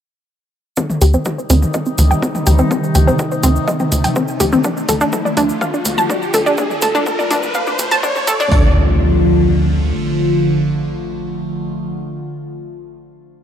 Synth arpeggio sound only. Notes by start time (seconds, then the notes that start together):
0.77 C4
1.02 G4
1.14 C4
1.38 C5
1.50 C4
1.74 D#5
1.86 C4
2.11 G5
2.23 C4
2.47 G4
2.59 C4
2.71 C4
2.95 G4
3.07 C4
3.32 C5
3.43 C4
3.68 D#5
3.80 C4
4.04 G5
4.16 C4
4.40 G4
4.53 C4
4.64 D4
4.89 A4
5.01 D4
5.25 D5
5.37 D4
5.61 F5
5.74 D4
5.98 A5
6.10 D4
6.34 A4
6.46 D4
6.58 D4
6.82 A4
6.95 D4
7.19 D5
7.31 D4
7.55 F5
7.67 D4
7.91 A5
8.03 D4
8.27 A4
8.40 D4
8.52 D4